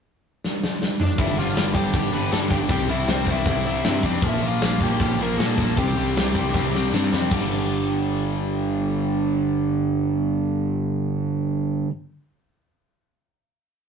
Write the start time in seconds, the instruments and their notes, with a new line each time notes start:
0.44 snare
0.64 snare
0.82 snare
1.00 lead electric guitar D4 D5, mid tom
1.18 picked electric bass G1, overdriven electric guitar G2 D3 G3, lead electric guitar E4 E5, kick, open hi-hat
1.37 picked electric bass G1, overdriven electric guitar G2 D3 G3, lead electric guitar F4 F5
1.56 picked electric bass G1, overdriven electric guitar G2 D3 G3, snare, open hi-hat
1.74 picked electric bass G1, overdriven electric guitar G2 D3 G3, lead electric guitar G4 G5, kick
1.93 picked electric bass G1, overdriven electric guitar G2 D3 G3, lead electric guitar G4 G5, kick, open hi-hat
2.12 picked electric bass G1, overdriven electric guitar G2 D3 G3, lead electric guitar B4 B5
2.31 overdriven electric guitar G2 D3 G3, picked electric bass G2, lead electric guitar A4 A5, snare, open hi-hat
2.50 picked electric bass G1, overdriven electric guitar G2 D3 G3, lead electric guitar G4 G5, kick
2.69 picked electric bass C2, overdriven electric guitar C3 G3 C4, lead electric guitar G4 G5, kick, open hi-hat
2.89 picked electric bass C2, overdriven electric guitar C3 G3 C4, lead electric guitar E4 E5
3.07 picked electric bass C2, overdriven electric guitar C3 G3 C4, lead electric guitar C4 C5, snare, open hi-hat
3.27 picked electric bass C2, overdriven electric guitar C3 G3 C4, kick
3.31 lead electric guitar E4 E5
3.46 picked electric bass C2, overdriven electric guitar C3 G3 C4, kick, open hi-hat
3.66 overdriven electric guitar C3 G3 C4
3.84 picked electric bass G2, overdriven electric guitar C3 G3 C4, snare, open hi-hat
4.03 picked electric bass F2, overdriven electric guitar C3 G3 C4, lead electric guitar D4 D5, kick
4.22 picked electric bass A#1, overdriven electric guitar A#2 F3 A#3, kick, open hi-hat
4.28 lead electric guitar E4 E5
4.42 picked electric bass A#1, overdriven electric guitar A#2 F3 A#3
4.47 lead electric guitar F4 F5
4.61 picked electric bass A#1, overdriven electric guitar A#2 F3 A#3, snare, open hi-hat
4.80 picked electric bass A#1, overdriven electric guitar A#2 F3 A#3, lead electric guitar G4 G5, kick
5.00 picked electric bass A#1, overdriven electric guitar A#2 F3 A#3, lead electric guitar G4 G5, kick, open hi-hat
5.19 picked electric bass A#1, overdriven electric guitar A#2 F3 A#3, lead electric guitar A#5
5.23 lead electric guitar A#4
5.37 picked electric bass A#2, overdriven electric guitar A#2 F3 A#3, lead electric guitar A4 A5, snare, open hi-hat
5.58 picked electric bass A#1, overdriven electric guitar A#2 F3 A#3, kick
5.77 picked electric bass C2, overdriven electric guitar C3 G3 C4, lead electric guitar G4 G5, kick, open hi-hat
5.96 picked electric bass C2, overdriven electric guitar C3 G3 C4
6.15 picked electric bass C2, overdriven electric guitar C3 G3 C4, snare, open hi-hat
6.34 picked electric bass C2, overdriven electric guitar C3 G3 C4, kick
6.53 picked electric bass C2, overdriven electric guitar C3 G3 C4, kick, snare
6.74 overdriven electric guitar C3 G3 C4, snare
6.92 picked electric bass G2, overdriven electric guitar C3 G3 C4, snare
7.12 picked electric bass F2, overdriven electric guitar C3 G3 C4, snare
7.31 picked electric bass G1, overdriven electric guitar G2 D3, kick, crash
7.35 overdriven electric guitar G3